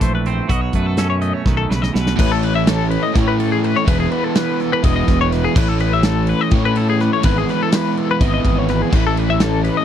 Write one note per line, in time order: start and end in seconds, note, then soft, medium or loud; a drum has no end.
0.00 0.40 A#1 medium
0.00 0.48 A2 medium
0.00 0.47 E3 medium
0.00 0.51 A3 medium
0.00 0.25 C4 medium
0.00 0.47 F#4 medium
0.00 0.14 C5 medium
0.00 kick medium
0.00 snare soft
0.00 closed hi-hat medium
0.15 0.27 B4 medium
0.26 0.47 C4 medium
0.26 0.50 C5 medium
0.26 closed hi-hat medium
0.48 0.69 B1 medium
0.48 1.69 B2 medium
0.48 2.15 F#4 medium
0.48 0.61 D#5 medium
0.48 kick loud
0.48 closed hi-hat medium
0.61 0.74 C#5 medium
0.73 1.31 F#2 medium
0.73 1.20 A3 medium
0.73 0.86 B4 medium
0.73 kick medium
0.73 closed hi-hat medium
0.86 0.97 A4 medium
0.97 2.16 C#4 medium
0.97 1.09 A4 medium
0.97 snare loud
0.97 closed hi-hat medium
1.10 1.21 C#5 medium
1.21 2.15 A3 medium
1.21 1.34 D#5 medium
1.21 closed hi-hat medium
1.34 1.45 C#5 medium
1.45 1.65 B1 loud
1.45 1.71 D#3 medium
1.45 1.57 B4 medium
1.45 kick loud
1.45 snare medium
1.57 1.71 A4 medium
1.70 1.90 B1 medium
1.70 1.93 C#3 medium
1.70 1.82 B4 medium
1.70 snare medium
1.82 1.95 D#5 medium
1.82 snare medium
1.94 2.14 B1 medium
1.94 2.18 B2 medium
1.94 2.19 B4 medium
1.94 snare medium
2.07 snare medium
2.16 2.96 A1 loud
2.16 3.11 A2 loud
2.16 3.13 E3 loud
2.16 3.13 A3 loud
2.16 3.14 C#4 loud
2.16 3.16 E4 loud
2.16 2.31 B4 medium
2.16 kick loud
2.16 crash loud
2.32 2.43 A4 medium
2.43 2.55 B4 medium
2.43 ride medium
2.55 2.67 E5 medium
2.67 2.90 A4 medium
2.67 snare loud
2.67 ride loud
2.90 3.03 B4 medium
2.90 ride medium
3.03 3.16 D#5 medium
3.13 3.84 A2 medium
3.13 3.73 A2 loud
3.13 3.85 E3 medium
3.13 3.85 A3 loud
3.13 3.86 C#4 medium
3.13 3.27 C#5 medium
3.13 kick loud
3.13 snare soft
3.13 ride loud
3.17 3.89 E4 medium
3.28 3.39 B4 medium
3.40 3.51 A4 medium
3.40 ride medium
3.52 3.65 G#4 medium
3.64 3.76 B4 medium
3.64 ride medium
3.76 3.88 C#5 medium
3.85 4.06 E1 loud
3.85 4.86 E3 loud
3.85 4.84 G#3 loud
3.85 4.82 B3 loud
3.85 4.82 E4 loud
3.85 3.99 B4 loud
3.85 kick loud
3.85 ride loud
4.00 4.11 G#4 medium
4.11 4.24 B4 medium
4.11 ride medium
4.24 4.36 A4 medium
4.35 4.60 B4 medium
4.35 snare loud
4.35 ride loud
4.60 4.72 A4 medium
4.60 snare soft
4.60 ride medium
4.73 4.84 B4 medium
4.82 5.03 E1 loud
4.82 5.55 E3 medium
4.82 5.56 G#3 medium
4.82 5.54 B3 medium
4.82 5.58 E4 loud
4.82 4.95 D#5 medium
4.82 kick loud
4.82 ride loud
4.96 5.19 D#5 medium
5.08 5.46 E1 loud
5.08 kick loud
5.08 snare soft
5.08 ride medium
5.21 5.33 C#5 medium
5.32 5.44 B4 medium
5.32 snare soft
5.32 ride medium
5.45 5.57 G#4 medium
5.55 6.32 A1 loud
5.55 6.50 A2 loud
5.55 6.52 E3 loud
5.55 6.50 A3 loud
5.55 6.51 C#4 loud
5.55 6.54 E4 loud
5.55 5.68 B4 medium
5.55 kick loud
5.55 crash loud
5.68 5.80 A4 medium
5.80 5.92 B4 medium
5.80 ride medium
5.93 6.04 E5 medium
6.03 6.28 A4 medium
6.03 snare loud
6.03 ride loud
6.27 6.41 B4 medium
6.27 ride medium
6.41 6.54 D#5 medium
6.51 7.22 A2 medium
6.51 7.09 A2 medium
6.51 7.24 E3 medium
6.51 7.22 A3 loud
6.51 7.23 C#4 medium
6.51 7.25 E4 medium
6.51 6.64 C#5 medium
6.51 kick loud
6.51 ride loud
6.65 6.76 B4 medium
6.76 6.88 A4 medium
6.76 ride medium
6.90 7.00 G#4 medium
7.00 7.12 B4 medium
7.00 snare soft
7.00 ride medium
7.13 7.24 C#5 medium
7.22 7.43 G#1 loud
7.22 8.17 G#2 loud
7.22 8.22 E3 loud
7.22 8.21 G#3 loud
7.22 8.19 B3 loud
7.22 8.19 E4 loud
7.22 7.36 B4 medium
7.22 kick loud
7.22 ride loud
7.38 7.48 G#4 medium
7.49 7.61 B4 medium
7.49 snare soft
7.49 ride medium
7.63 7.74 A4 medium
7.72 7.98 B4 medium
7.72 snare loud
7.72 ride loud
7.97 8.09 A4 medium
7.97 ride medium
8.11 8.21 B4 medium
8.20 8.39 G#1 loud
8.20 8.90 G#2 medium
8.20 8.91 E3 medium
8.20 8.92 G#3 medium
8.20 8.90 B3 medium
8.20 8.94 E4 medium
8.20 8.32 D#5 medium
8.20 kick loud
8.20 ride loud
8.34 8.59 D#5 medium
8.45 8.82 G#1 medium
8.45 kick medium
8.45 ride medium
8.59 8.69 C#5 medium
8.69 8.82 B4 medium
8.69 snare soft
8.69 ride medium
8.82 8.94 G#4 medium
8.90 9.69 A1 loud
8.90 9.85 A2 loud
8.90 9.85 E3 loud
8.90 9.85 A3 loud
8.90 9.85 C#4 loud
8.90 9.04 B4 loud
8.90 kick loud
8.90 crash loud
8.94 9.85 E4 loud
9.07 9.18 A4 medium
9.17 9.28 B4 medium
9.17 ride medium
9.30 9.40 E5 medium
9.40 9.64 A4 medium
9.40 snare loud
9.40 ride loud
9.64 9.75 B4 medium
9.64 snare soft
9.64 ride medium
9.77 9.85 D#5 medium